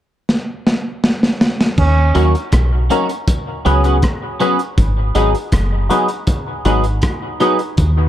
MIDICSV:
0, 0, Header, 1, 7, 480
1, 0, Start_track
1, 0, Tempo, 750094
1, 1135, Time_signature, 4, 2, 24, 8
1, 5176, End_track
2, 0, Start_track
2, 0, Title_t, "Synth stab"
2, 0, Program_c, 0, 62
2, 1375, Note_on_c, 0, 61, 94
2, 1379, Note_on_c, 0, 63, 89
2, 1380, Note_on_c, 0, 66, 85
2, 1380, Note_on_c, 0, 70, 106
2, 1505, Note_off_c, 0, 61, 0
2, 1507, Note_off_c, 0, 63, 0
2, 1508, Note_off_c, 0, 66, 0
2, 1508, Note_off_c, 0, 70, 0
2, 1857, Note_on_c, 0, 61, 90
2, 1861, Note_on_c, 0, 63, 81
2, 1862, Note_on_c, 0, 66, 83
2, 1865, Note_on_c, 0, 70, 101
2, 1986, Note_off_c, 0, 61, 0
2, 1988, Note_off_c, 0, 63, 0
2, 1989, Note_off_c, 0, 66, 0
2, 1990, Note_off_c, 0, 70, 0
2, 2335, Note_on_c, 0, 61, 91
2, 2339, Note_on_c, 0, 66, 92
2, 2341, Note_on_c, 0, 68, 80
2, 2346, Note_on_c, 0, 71, 102
2, 2452, Note_off_c, 0, 61, 0
2, 2454, Note_off_c, 0, 66, 0
2, 2458, Note_off_c, 0, 68, 0
2, 2459, Note_off_c, 0, 71, 0
2, 2459, Note_on_c, 0, 61, 76
2, 2462, Note_on_c, 0, 66, 70
2, 2466, Note_on_c, 0, 68, 69
2, 2467, Note_on_c, 0, 71, 80
2, 2584, Note_off_c, 0, 61, 0
2, 2586, Note_off_c, 0, 66, 0
2, 2587, Note_off_c, 0, 68, 0
2, 2588, Note_off_c, 0, 71, 0
2, 2814, Note_on_c, 0, 61, 91
2, 2819, Note_on_c, 0, 66, 91
2, 2820, Note_on_c, 0, 68, 83
2, 2824, Note_on_c, 0, 71, 110
2, 2945, Note_off_c, 0, 61, 0
2, 2947, Note_off_c, 0, 66, 0
2, 2948, Note_off_c, 0, 68, 0
2, 2950, Note_off_c, 0, 71, 0
2, 3295, Note_on_c, 0, 63, 97
2, 3299, Note_on_c, 0, 68, 92
2, 3300, Note_on_c, 0, 66, 86
2, 3303, Note_on_c, 0, 71, 102
2, 3425, Note_off_c, 0, 63, 0
2, 3427, Note_off_c, 0, 68, 0
2, 3428, Note_off_c, 0, 66, 0
2, 3429, Note_off_c, 0, 71, 0
2, 3771, Note_on_c, 0, 63, 84
2, 3773, Note_on_c, 0, 66, 82
2, 3778, Note_on_c, 0, 68, 76
2, 3780, Note_on_c, 0, 71, 93
2, 3904, Note_off_c, 0, 63, 0
2, 3904, Note_off_c, 0, 66, 0
2, 3907, Note_off_c, 0, 68, 0
2, 3908, Note_off_c, 0, 71, 0
2, 4256, Note_on_c, 0, 66, 86
2, 4257, Note_on_c, 0, 63, 92
2, 4258, Note_on_c, 0, 68, 89
2, 4264, Note_on_c, 0, 71, 103
2, 4386, Note_off_c, 0, 63, 0
2, 4386, Note_off_c, 0, 66, 0
2, 4387, Note_off_c, 0, 68, 0
2, 4390, Note_off_c, 0, 71, 0
2, 4736, Note_on_c, 0, 63, 89
2, 4738, Note_on_c, 0, 66, 83
2, 4742, Note_on_c, 0, 68, 90
2, 4744, Note_on_c, 0, 71, 106
2, 4866, Note_off_c, 0, 63, 0
2, 4867, Note_off_c, 0, 66, 0
2, 4869, Note_off_c, 0, 68, 0
2, 4870, Note_off_c, 0, 71, 0
2, 5176, End_track
3, 0, Start_track
3, 0, Title_t, "Trombone"
3, 0, Program_c, 1, 57
3, 1144, Note_on_c, 1, 61, 103
3, 1480, Note_off_c, 1, 61, 0
3, 5176, End_track
4, 0, Start_track
4, 0, Title_t, "Clean electric guitar"
4, 0, Program_c, 2, 27
4, 1376, Note_on_c, 2, 54, 78
4, 1380, Note_on_c, 2, 58, 84
4, 1383, Note_on_c, 2, 61, 87
4, 1388, Note_on_c, 2, 66, 91
4, 1474, Note_off_c, 2, 54, 0
4, 1476, Note_off_c, 2, 58, 0
4, 1478, Note_off_c, 2, 61, 0
4, 1480, Note_off_c, 2, 66, 0
4, 1856, Note_on_c, 2, 54, 65
4, 1859, Note_on_c, 2, 58, 76
4, 1862, Note_on_c, 2, 61, 76
4, 1865, Note_on_c, 2, 66, 77
4, 1954, Note_off_c, 2, 54, 0
4, 1956, Note_off_c, 2, 58, 0
4, 1957, Note_off_c, 2, 61, 0
4, 1959, Note_off_c, 2, 66, 0
4, 2337, Note_on_c, 2, 54, 78
4, 2341, Note_on_c, 2, 59, 73
4, 2342, Note_on_c, 2, 61, 81
4, 2347, Note_on_c, 2, 68, 76
4, 2435, Note_off_c, 2, 54, 0
4, 2436, Note_off_c, 2, 59, 0
4, 2437, Note_off_c, 2, 61, 0
4, 2440, Note_off_c, 2, 68, 0
4, 2454, Note_on_c, 2, 68, 68
4, 2458, Note_on_c, 2, 61, 64
4, 2461, Note_on_c, 2, 59, 56
4, 2466, Note_on_c, 2, 54, 57
4, 2530, Note_off_c, 2, 68, 0
4, 2532, Note_off_c, 2, 61, 0
4, 2534, Note_off_c, 2, 59, 0
4, 2536, Note_off_c, 2, 54, 0
4, 2815, Note_on_c, 2, 54, 72
4, 2820, Note_on_c, 2, 59, 88
4, 2821, Note_on_c, 2, 61, 87
4, 2826, Note_on_c, 2, 68, 87
4, 2914, Note_off_c, 2, 54, 0
4, 2916, Note_off_c, 2, 59, 0
4, 2917, Note_off_c, 2, 61, 0
4, 2919, Note_off_c, 2, 68, 0
4, 3297, Note_on_c, 2, 54, 86
4, 3301, Note_on_c, 2, 59, 86
4, 3302, Note_on_c, 2, 63, 94
4, 3308, Note_on_c, 2, 68, 94
4, 3395, Note_off_c, 2, 54, 0
4, 3397, Note_off_c, 2, 59, 0
4, 3397, Note_off_c, 2, 63, 0
4, 3400, Note_off_c, 2, 68, 0
4, 3778, Note_on_c, 2, 54, 72
4, 3781, Note_on_c, 2, 59, 65
4, 3785, Note_on_c, 2, 63, 74
4, 3789, Note_on_c, 2, 68, 73
4, 3875, Note_off_c, 2, 54, 0
4, 3877, Note_off_c, 2, 59, 0
4, 3879, Note_off_c, 2, 63, 0
4, 3881, Note_off_c, 2, 68, 0
4, 4259, Note_on_c, 2, 54, 81
4, 4263, Note_on_c, 2, 59, 76
4, 4265, Note_on_c, 2, 63, 80
4, 4269, Note_on_c, 2, 68, 82
4, 4356, Note_off_c, 2, 54, 0
4, 4358, Note_off_c, 2, 59, 0
4, 4359, Note_off_c, 2, 63, 0
4, 4361, Note_off_c, 2, 68, 0
4, 4738, Note_on_c, 2, 54, 87
4, 4739, Note_on_c, 2, 59, 90
4, 4744, Note_on_c, 2, 63, 90
4, 4747, Note_on_c, 2, 68, 95
4, 4835, Note_off_c, 2, 54, 0
4, 4836, Note_off_c, 2, 59, 0
4, 4839, Note_off_c, 2, 63, 0
4, 4840, Note_off_c, 2, 68, 0
4, 5176, End_track
5, 0, Start_track
5, 0, Title_t, "Fingered electric bass"
5, 0, Program_c, 3, 33
5, 1140, Note_on_c, 3, 39, 98
5, 1366, Note_off_c, 3, 39, 0
5, 1381, Note_on_c, 3, 39, 93
5, 1495, Note_off_c, 3, 39, 0
5, 1619, Note_on_c, 3, 35, 90
5, 1846, Note_off_c, 3, 35, 0
5, 2345, Note_on_c, 3, 37, 96
5, 2569, Note_off_c, 3, 37, 0
5, 3060, Note_on_c, 3, 32, 89
5, 3287, Note_off_c, 3, 32, 0
5, 3299, Note_on_c, 3, 32, 86
5, 3414, Note_off_c, 3, 32, 0
5, 3538, Note_on_c, 3, 30, 94
5, 3766, Note_off_c, 3, 30, 0
5, 4260, Note_on_c, 3, 32, 90
5, 4487, Note_off_c, 3, 32, 0
5, 4980, Note_on_c, 3, 39, 103
5, 5176, Note_off_c, 3, 39, 0
5, 5176, End_track
6, 0, Start_track
6, 0, Title_t, "Muted clean electric guitar strokes"
6, 4863, Note_on_c, 9, 29, 40
6, 4927, Note_off_c, 9, 29, 0
6, 5176, End_track
7, 0, Start_track
7, 0, Title_t, "Drums"
7, 185, Note_on_c, 9, 38, 54
7, 249, Note_off_c, 9, 38, 0
7, 426, Note_on_c, 9, 38, 66
7, 490, Note_off_c, 9, 38, 0
7, 664, Note_on_c, 9, 38, 83
7, 728, Note_off_c, 9, 38, 0
7, 787, Note_on_c, 9, 38, 80
7, 851, Note_off_c, 9, 38, 0
7, 903, Note_on_c, 9, 38, 98
7, 967, Note_off_c, 9, 38, 0
7, 1028, Note_on_c, 9, 38, 89
7, 1092, Note_off_c, 9, 38, 0
7, 1137, Note_on_c, 9, 49, 79
7, 1138, Note_on_c, 9, 36, 90
7, 1201, Note_off_c, 9, 49, 0
7, 1202, Note_off_c, 9, 36, 0
7, 1375, Note_on_c, 9, 42, 79
7, 1439, Note_off_c, 9, 42, 0
7, 1503, Note_on_c, 9, 42, 48
7, 1567, Note_off_c, 9, 42, 0
7, 1613, Note_on_c, 9, 42, 99
7, 1617, Note_on_c, 9, 36, 107
7, 1622, Note_on_c, 9, 37, 108
7, 1677, Note_off_c, 9, 42, 0
7, 1681, Note_off_c, 9, 36, 0
7, 1686, Note_off_c, 9, 37, 0
7, 1858, Note_on_c, 9, 42, 67
7, 1922, Note_off_c, 9, 42, 0
7, 1979, Note_on_c, 9, 42, 54
7, 2043, Note_off_c, 9, 42, 0
7, 2096, Note_on_c, 9, 36, 117
7, 2096, Note_on_c, 9, 42, 96
7, 2160, Note_off_c, 9, 36, 0
7, 2160, Note_off_c, 9, 42, 0
7, 2341, Note_on_c, 9, 42, 79
7, 2405, Note_off_c, 9, 42, 0
7, 2458, Note_on_c, 9, 42, 51
7, 2522, Note_off_c, 9, 42, 0
7, 2575, Note_on_c, 9, 42, 80
7, 2578, Note_on_c, 9, 36, 103
7, 2584, Note_on_c, 9, 37, 108
7, 2639, Note_off_c, 9, 42, 0
7, 2642, Note_off_c, 9, 36, 0
7, 2648, Note_off_c, 9, 37, 0
7, 2817, Note_on_c, 9, 42, 57
7, 2881, Note_off_c, 9, 42, 0
7, 2939, Note_on_c, 9, 42, 43
7, 3003, Note_off_c, 9, 42, 0
7, 3057, Note_on_c, 9, 36, 96
7, 3058, Note_on_c, 9, 42, 88
7, 3121, Note_off_c, 9, 36, 0
7, 3122, Note_off_c, 9, 42, 0
7, 3296, Note_on_c, 9, 42, 80
7, 3360, Note_off_c, 9, 42, 0
7, 3421, Note_on_c, 9, 42, 49
7, 3485, Note_off_c, 9, 42, 0
7, 3532, Note_on_c, 9, 42, 101
7, 3535, Note_on_c, 9, 36, 106
7, 3542, Note_on_c, 9, 37, 105
7, 3596, Note_off_c, 9, 42, 0
7, 3599, Note_off_c, 9, 36, 0
7, 3606, Note_off_c, 9, 37, 0
7, 3778, Note_on_c, 9, 42, 68
7, 3842, Note_off_c, 9, 42, 0
7, 3894, Note_on_c, 9, 42, 52
7, 3958, Note_off_c, 9, 42, 0
7, 4011, Note_on_c, 9, 42, 95
7, 4015, Note_on_c, 9, 36, 111
7, 4075, Note_off_c, 9, 42, 0
7, 4079, Note_off_c, 9, 36, 0
7, 4256, Note_on_c, 9, 42, 79
7, 4320, Note_off_c, 9, 42, 0
7, 4375, Note_on_c, 9, 42, 52
7, 4439, Note_off_c, 9, 42, 0
7, 4490, Note_on_c, 9, 42, 80
7, 4498, Note_on_c, 9, 36, 106
7, 4499, Note_on_c, 9, 37, 104
7, 4554, Note_off_c, 9, 42, 0
7, 4562, Note_off_c, 9, 36, 0
7, 4563, Note_off_c, 9, 37, 0
7, 4737, Note_on_c, 9, 42, 54
7, 4801, Note_off_c, 9, 42, 0
7, 4857, Note_on_c, 9, 42, 44
7, 4921, Note_off_c, 9, 42, 0
7, 4974, Note_on_c, 9, 42, 84
7, 4978, Note_on_c, 9, 36, 93
7, 5038, Note_off_c, 9, 42, 0
7, 5042, Note_off_c, 9, 36, 0
7, 5176, End_track
0, 0, End_of_file